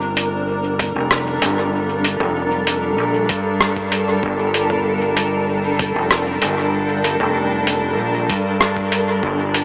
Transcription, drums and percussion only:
0.17 closed hi-hat
0.79 kick, closed hi-hat, mid tom
1.11 cross-stick
1.42 closed hi-hat
2.04 closed hi-hat
2.20 mid tom
2.67 closed hi-hat
3.29 kick, closed hi-hat
3.61 cross-stick
3.77 kick
3.92 closed hi-hat
4.23 kick
4.54 closed hi-hat
4.70 mid tom
5.17 closed hi-hat
5.79 kick, closed hi-hat, mid tom
6.11 cross-stick
6.42 closed hi-hat
7.04 closed hi-hat
7.20 mid tom
7.67 closed hi-hat
8.29 kick, closed hi-hat
8.61 cross-stick
8.77 kick
8.92 closed hi-hat
9.23 kick
9.54 closed hi-hat

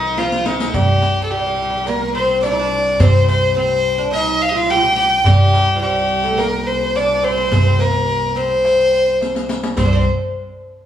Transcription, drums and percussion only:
0.03 darbuka ka
0.17 riq, darbuka tek
0.32 riq
0.46 riq
0.60 riq
0.74 riq, darbuka dum
1.02 riq, darbuka tek
1.73 riq, darbuka ka
1.87 riq, darbuka tek
2.15 riq
2.29 riq
2.43 riq, darbuka tek
2.72 darbuka ka
2.86 darbuka ka
3.00 riq, darbuka dum
3.28 riq, darbuka tek
3.99 riq, darbuka ka
4.13 riq, darbuka tek
4.42 riq
4.56 riq
4.69 riq, darbuka tek
5.24 riq, darbuka dum
5.53 riq, darbuka tek
6.25 riq
6.39 riq, darbuka tek
6.68 riq
6.82 riq
6.95 riq, darbuka tek
7.52 riq, darbuka dum
7.66 riq, darbuka ka
7.80 riq, darbuka tek
8.08 darbuka ka
8.37 riq, darbuka ka
8.65 riq, darbuka tek
8.94 riq
9.08 riq
9.21 riq, darbuka tek
9.35 riq, darbuka ka
9.49 riq, darbuka tek
9.63 riq, darbuka ka
9.77 riq, darbuka dum

